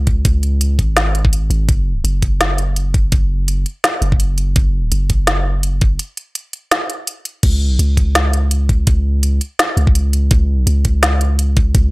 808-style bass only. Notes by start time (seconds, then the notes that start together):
Already playing: C#2
0.25 C#2
0.79 G#1
1.50 G#1
1.69 F#1
2.04 F#1
3.12 F#1
4.02 F#1
4.56 F#1
4.92 F#1
7.43 C#2
7.79 C#2
8.87 C#2
9.77 C#2
10.31 C#2
10.67 C#2
11.75 C#2